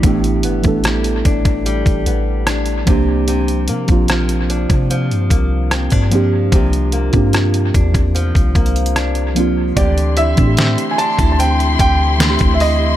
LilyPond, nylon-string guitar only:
\new Staff \with { instrumentName = "Nylon-string guitar" } { \time 4/4 \key d \minor \tempo 4 = 74 <a, g b d'>8 b8 g8 d'8 g8 b8 d'8 c8 | c8 bes8 f8 d'8 f8 bes8 c'16 d'16 f8 | c8 bes4 d'8 f8 bes8 d'8 f8 | <d g'>8 e'8 c'8 d'16 e'16 c'8 g'8 c'8 e'8 | }